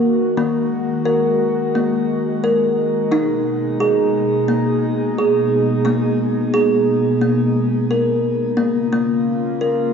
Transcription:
0.00 0.34 D#3 medium
0.00 3.07 D#3 medium
0.00 0.35 A#3 medium
0.00 3.07 F#4 medium
0.00 0.38 A#4 medium
0.37 3.07 D#3 medium
0.37 8.55 G#3 medium
0.37 1.06 A#3 medium
1.05 1.74 A#4 medium
1.75 2.43 A#3 medium
2.44 3.12 A#4 medium
3.11 8.55 B2 medium
3.11 5.81 G#3 medium
3.11 3.80 D#4 medium
3.11 8.55 D#4 medium
3.80 4.49 G#4 medium
4.48 5.17 A#3 medium
5.18 5.86 G#4 medium
5.85 8.54 G#3 medium
5.85 6.54 A#3 medium
6.54 7.22 G#4 medium
7.21 7.90 A#3 medium
7.91 8.59 A#4 medium
8.57 9.93 C#3 medium
8.57 8.91 A#3 medium
8.57 9.93 A#3 medium
8.57 9.93 F4 medium
8.93 9.61 A#3 medium
9.61 9.93 A#4 medium

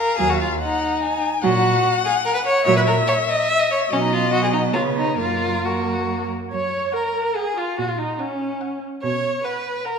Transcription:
0.00 0.17 A#4 medium
0.00 0.59 F5 medium
0.18 0.53 D#2 medium
0.18 0.37 F#3 medium
0.18 0.31 G#4 medium
0.30 0.40 F#4 medium
0.41 0.49 F4 medium
0.60 1.22 D#4 medium
0.60 1.01 F#5 medium
1.03 1.43 G#5 medium
1.42 1.77 A#2 medium
1.42 1.62 F#3 medium
1.42 2.01 F#4 medium
1.42 2.64 F#5 medium
2.05 2.13 G#4 medium
2.25 2.34 A#4 loud
2.35 2.39 B4 medium
2.45 2.65 C#5 loud
2.65 3.01 A#2 medium
2.65 2.85 F#3 medium
2.65 2.76 C#5 loud
2.65 3.92 E5 medium
2.77 2.81 B4 medium
2.87 2.95 A#4 medium
3.07 3.15 C#5 loud
3.29 3.51 D#5 medium
3.49 3.61 E5 loud
3.59 3.70 D#5 medium
3.72 3.80 C#5 medium
3.90 4.77 B2 medium
3.90 4.29 F#3 medium
3.90 3.96 C#4 medium
3.90 4.74 D#5 medium
4.01 4.14 D#4 medium
4.13 4.32 F4 medium
4.31 4.75 F#3 medium
4.31 4.42 F#4 medium
4.43 4.47 G#4 medium
4.53 4.61 D#4 medium
4.73 5.19 C#3 medium
4.73 5.19 B3 medium
4.73 4.82 F4 medium
4.73 5.17 C#5 medium
4.97 5.19 D#4 medium
5.17 6.29 F#2 medium
5.17 5.62 A#3 medium
5.17 5.67 F4 medium
5.17 6.26 A#4 medium
5.63 6.29 A#3 medium
5.63 6.30 F#4 medium
6.50 6.85 F#2 medium
6.50 6.94 C#5 medium
6.50 6.92 C#5 medium
6.92 7.37 A#4 medium
6.92 7.24 F#5 medium
7.35 7.56 G#4 medium
7.35 7.60 G#4 medium
7.35 7.67 F#5 medium
7.56 7.77 F4 medium
7.56 7.78 F4 medium
7.78 8.11 A#2 medium
7.78 7.87 F#4 medium
7.78 7.90 F#4 medium
7.88 7.92 F4 soft
7.88 8.00 F4 medium
7.98 8.21 D#4 medium
7.98 8.19 D#4 medium
8.19 8.81 C#4 medium
8.19 8.82 C#4 medium
8.19 8.50 F#5 medium
8.61 8.92 F#5 medium
9.02 9.36 B2 medium
9.02 9.45 C#5 medium
9.02 9.41 C#5 medium
9.44 9.86 B4 medium
9.44 9.75 F#5 medium
9.85 9.99 A#4 medium
9.85 9.99 F#5 medium

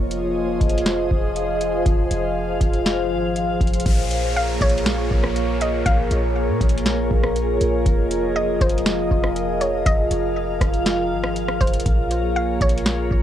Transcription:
0.00 0.58 F1 loud
0.00 3.82 F3 medium
0.00 3.82 F4 medium
0.00 3.82 G#4 medium
0.00 3.82 C5 medium
0.00 1.84 D#5 medium
0.11 closed hi-hat medium
0.61 1.09 F1 loud
0.61 kick medium
0.61 closed hi-hat medium
0.69 closed hi-hat medium
0.78 closed hi-hat medium
0.86 snare loud
0.86 closed hi-hat medium
1.11 1.83 F1 loud
1.11 kick medium
1.36 closed hi-hat medium
1.61 closed hi-hat medium
1.86 2.10 F1 loud
1.86 3.84 F5 medium
1.86 kick loud
1.86 closed hi-hat medium
2.11 2.59 F1 loud
2.11 closed hi-hat medium
2.61 3.12 F1 loud
2.61 kick medium
2.61 closed hi-hat medium
2.73 closed hi-hat soft
2.86 snare loud
2.86 closed hi-hat medium
3.11 3.59 G#1 loud
3.36 closed hi-hat medium
3.61 3.85 F1 loud
3.61 kick loud
3.61 closed hi-hat medium
3.67 closed hi-hat medium
3.74 closed hi-hat medium
3.80 closed hi-hat medium
3.86 4.58 A#1 loud
3.86 7.82 A#3 medium
3.86 13.23 F4 medium
3.86 11.82 G#4 medium
3.86 11.82 A#4 medium
3.86 7.82 C#5 medium
3.86 kick loud
3.86 closed hi-hat medium
3.86 downlifter medium
4.11 closed hi-hat medium
4.36 4.60 F5 medium
4.61 5.09 A#1 loud
4.61 5.57 C#5 medium
4.61 kick medium
4.61 closed hi-hat medium
4.69 closed hi-hat medium
4.78 closed hi-hat medium
4.86 snare loud
4.86 closed hi-hat medium
5.11 5.83 A#1 loud
5.11 kick medium
5.24 cross-stick medium
5.36 closed hi-hat medium
5.61 5.85 D#5 medium
5.61 closed hi-hat medium
5.86 6.10 A#1 loud
5.86 7.32 F5 loud
5.86 kick loud
5.86 closed hi-hat medium
6.11 6.50 A#1 loud
6.11 closed hi-hat medium
6.49 6.60 A#2 loud
6.61 7.09 A#1 loud
6.61 kick loud
6.61 closed hi-hat medium
6.69 closed hi-hat medium
6.78 closed hi-hat medium
6.86 snare loud
6.86 closed hi-hat medium
7.11 7.59 A#1 loud
7.11 kick medium
7.24 cross-stick medium
7.36 closed hi-hat medium
7.61 7.85 A#1 loud
7.61 closed hi-hat medium
7.86 8.58 F1 loud
7.86 11.82 F3 medium
7.86 9.84 D#5 medium
7.86 kick loud
7.86 closed hi-hat medium
8.11 closed hi-hat medium
8.36 8.60 D#5 medium
8.61 9.09 F1 loud
8.61 9.57 C5 medium
8.61 kick loud
8.61 closed hi-hat medium
8.69 closed hi-hat medium
8.78 closed hi-hat medium
8.86 snare loud
8.86 closed hi-hat medium
9.11 9.83 F1 loud
9.11 kick medium
9.24 cross-stick medium
9.36 closed hi-hat medium
9.61 9.85 C#5 medium
9.61 closed hi-hat medium
9.86 10.10 F1 loud
9.86 10.82 D#5 loud
9.86 11.84 F5 medium
9.86 kick loud
9.86 closed hi-hat medium
10.11 10.59 F1 loud
10.11 closed hi-hat medium
10.61 11.13 F1 loud
10.61 kick loud
10.61 cross-stick medium
10.61 closed hi-hat medium
10.74 closed hi-hat soft
10.86 snare loud
10.86 closed hi-hat medium
11.11 11.59 G#1 loud
11.24 cross-stick loud
11.36 closed hi-hat medium
11.48 cross-stick medium
11.61 11.85 F1 loud
11.61 11.85 C5 medium
11.61 kick loud
11.61 closed hi-hat soft
11.67 closed hi-hat medium
11.74 closed hi-hat medium
11.80 closed hi-hat medium
11.86 12.58 A#1 loud
11.86 13.23 A#3 medium
11.86 13.23 G#4 medium
11.86 13.23 A#4 medium
11.86 13.23 C#5 medium
11.86 kick loud
11.86 closed hi-hat medium
12.11 closed hi-hat medium
12.36 12.60 F5 medium
12.61 13.09 A#1 loud
12.61 13.23 C#5 medium
12.61 kick loud
12.61 closed hi-hat medium
12.69 closed hi-hat medium
12.78 closed hi-hat medium
12.86 snare loud
12.86 closed hi-hat medium
13.11 13.23 A#1 loud
13.11 kick medium

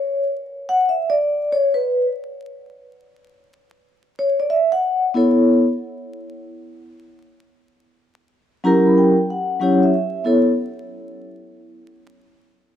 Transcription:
0.00 0.22 C#5 medium
0.69 0.90 F#5 medium
0.89 1.11 E5 medium
1.10 1.54 D5 loud
1.52 1.75 C#5 medium
1.74 2.04 B4 medium
4.19 4.41 C#5 medium
4.40 4.50 D5 medium
4.50 4.70 E5 medium
4.72 5.02 F#5 medium
5.14 5.63 B3 medium
5.14 5.64 E4 medium
5.14 5.64 A4 medium
5.14 5.65 C#5 medium
8.64 9.14 F#3 medium
8.64 9.14 C#4 medium
8.64 9.14 E4 medium
8.64 9.14 G4 medium
8.64 9.15 A#4 medium
8.64 8.85 A#5 medium
8.86 8.97 B5 medium
8.97 9.27 G5 medium
9.30 9.60 F#5 medium
9.60 9.86 F#3 medium
9.60 9.87 C#4 medium
9.60 9.87 E4 medium
9.60 9.87 G4 medium
9.60 9.88 C#5 medium
9.60 9.81 F#5 medium
9.83 9.93 E5 medium
9.94 10.24 E5 medium
10.24 10.50 B3 medium
10.24 10.51 E4 medium
10.24 10.51 A4 medium
10.24 10.52 C#5 medium

